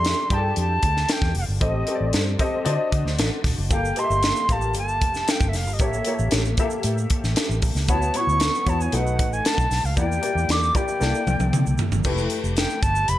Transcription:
Already playing: F2 D4 G4 G#4 A4 E5 C6
0.05 snare, closed hi-hat
0.30 G2 D4 G4 G#4 G5 A5, kick, closed hi-hat
0.37 A4
0.56 F2 A5, closed hi-hat
0.83 D2, kick, closed hi-hat
0.97 snare
1.09 G5, snare, closed hi-hat
1.22 E2, kick, snare
1.35 F1 F5, open hi-hat
1.48 G1
1.60 A1 C4 G4 A4 D#5, kick, closed hi-hat
1.65 D#5
1.87 C4 G4 A4 C5, closed hi-hat
1.95 D5
2.01 A1
2.13 G2, snare, closed hi-hat
2.39 C4 G4 A4 D#5, kick, closed hi-hat
2.65 D3 D4 F#4 C5 D#5, closed hi-hat
2.92 D3, kick, closed hi-hat
3.05 D2, snare
3.19 A1, snare, closed hi-hat
3.44 D#1, kick, snare, open hi-hat
3.58 F#1
3.71 G1 A#3 G4 A4 F5 G5, kick, closed hi-hat, shaker
3.85 shaker
3.96 A#3 G4 A4 D#5 C6, closed hi-hat, shaker
4.04 E5
4.10 G1, shaker
4.23 snare, closed hi-hat, shaker
4.36 shaker
4.49 A1 A#3 G4 A4 F5 A5, kick, closed hi-hat, shaker
4.61 shaker
4.74 G1 A5, closed hi-hat, shaker
4.88 shaker
5.01 F1, kick, closed hi-hat
5.14 snare, shaker
5.28 G5, snare, closed hi-hat, shaker
5.41 G1, kick, shaker
5.48 E5
5.53 F1 F5, snare, open hi-hat, shaker
5.67 G1, shaker
5.73 D#5
5.79 A1 A#3 G4 A4 C#5 E5, kick, closed hi-hat, shaker
5.93 shaker
6.05 A#3 G4 A4 C#5, closed hi-hat, shaker
6.19 A1, shaker
6.31 A1, snare, closed hi-hat, shaker
6.45 shaker
6.57 A#3 G4 A4 E5, kick, closed hi-hat, shaker
6.70 shaker
6.83 A2, closed hi-hat, shaker
6.98 shaker
7.10 kick, closed hi-hat
7.24 A1, snare, shaker
7.36 snare, closed hi-hat, shaker
7.49 A1, shaker
7.62 A#1, kick, open hi-hat, shaker
7.75 C#2, snare, shaker
7.88 D2 B3 E4 F#4 C#5 A5, kick, closed hi-hat, shaker
8.02 shaker
8.14 B3 E4 F#4 C#5 C#6, closed hi-hat, shaker
8.27 D2, shaker
8.40 snare, closed hi-hat, shaker
8.55 shaker
8.66 E2 B3 E4 F#4 C#5 A5, kick, closed hi-hat, shaker
8.81 G#5, shaker
8.92 B1 A3 D#4 F#4 B4 F#5, closed hi-hat, shaker
9.07 shaker
9.19 A1, kick, closed hi-hat
9.33 G#5, shaker
9.45 A5, snare, closed hi-hat, shaker
9.58 B1, kick, shaker
9.71 B1, snare, open hi-hat, shaker
9.84 C#2 F5, shaker
9.96 E2 A#3 E4 G4 D5 G5, kick, closed hi-hat, shaker
10.12 shaker
10.22 A#3 E4 G4 D5, closed hi-hat, shaker
10.35 E2, shaker
10.49 E2 D6, snare, closed hi-hat, shaker
10.63 shaker
10.74 A#3 E4 G4 D5 G5, kick, closed hi-hat, shaker
10.88 shaker
10.99 C2 A#3 E4 A4 D5, snare, shaker
11.15 shaker
11.27 C2, high tom, shaker
11.39 C2, high tom, shaker
11.53 C3, mid tom, shaker
11.66 C2, shaker
11.78 floor tom, shaker
11.92 G1, floor tom, shaker
12.04 F1 A3 E4 G4 B4, kick, crash, shaker
12.18 shaker
12.30 closed hi-hat
12.44 F1, shaker
12.57 G5, snare, closed hi-hat, shaker
12.70 shaker
12.82 G1 A5, kick, closed hi-hat, shaker
12.95 shaker
13.08 F1 B5, closed hi-hat, shaker

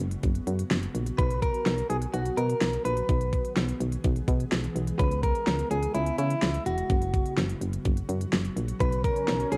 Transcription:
Already playing: C#3 F#3 B3 F#4
0.00 F#1, closed hi-hat
0.11 closed hi-hat
0.23 F#1, kick, closed hi-hat
0.35 closed hi-hat
0.47 F#2, closed hi-hat
0.59 closed hi-hat
0.71 F#1, snare, closed hi-hat
0.83 closed hi-hat
0.95 A#1, closed hi-hat
1.06 closed hi-hat
1.18 B1 D#3 B3 B4, kick, closed hi-hat
1.30 closed hi-hat
1.42 A#4, kick, closed hi-hat
1.54 closed hi-hat
1.66 B1, snare, closed hi-hat
1.78 closed hi-hat
1.90 B1 G#4, closed hi-hat
2.02 closed hi-hat
2.14 B1 F#4, closed hi-hat
2.25 closed hi-hat
2.37 B2 A#4, closed hi-hat
2.50 closed hi-hat
2.61 B1, snare, closed hi-hat
2.73 closed hi-hat
2.85 A#1 B4, closed hi-hat
2.97 closed hi-hat
3.09 B1 E3 G#3 G#4, kick, closed hi-hat
3.21 closed hi-hat
3.33 kick, closed hi-hat
3.45 closed hi-hat
3.57 B1, snare, closed hi-hat
3.69 closed hi-hat
3.80 B1, closed hi-hat
3.92 closed hi-hat
4.04 B1, kick, closed hi-hat
4.16 closed hi-hat
4.28 B2, kick, closed hi-hat
4.40 closed hi-hat
4.52 B1, snare, closed hi-hat
4.64 closed hi-hat
4.76 B1, closed hi-hat
4.87 closed hi-hat
4.99 C#2 C#3 E4 B4, kick, closed hi-hat
5.11 closed hi-hat
5.23 A#4, kick, closed hi-hat
5.35 closed hi-hat
5.47 C#2, snare, closed hi-hat
5.59 closed hi-hat
5.71 C#2 G#4, closed hi-hat
5.83 closed hi-hat
5.95 C#2 E4, closed hi-hat
6.06 closed hi-hat
6.18 C#3 E4, closed hi-hat
6.30 closed hi-hat
6.42 C#2, snare, closed hi-hat
6.54 closed hi-hat
6.66 E1 F#4, closed hi-hat
6.78 closed hi-hat
6.90 F#1 F#3 F#4, kick, closed hi-hat
7.02 closed hi-hat
7.14 kick, closed hi-hat
7.26 closed hi-hat
7.37 F#1, snare, closed hi-hat
7.49 closed hi-hat
7.61 F#1, closed hi-hat
7.73 closed hi-hat
7.85 F#1, kick, closed hi-hat
7.97 closed hi-hat
8.09 F#2, closed hi-hat
8.21 closed hi-hat
8.33 F#1, snare, closed hi-hat
8.45 closed hi-hat
8.56 A#1, closed hi-hat
8.68 closed hi-hat
8.80 B1 D#3 B3 B4, kick, closed hi-hat, swell
8.92 closed hi-hat
9.04 A#4, kick, closed hi-hat
9.16 closed hi-hat
9.28 B1, snare, closed hi-hat
9.40 closed hi-hat
9.52 B1 G#4, closed hi-hat

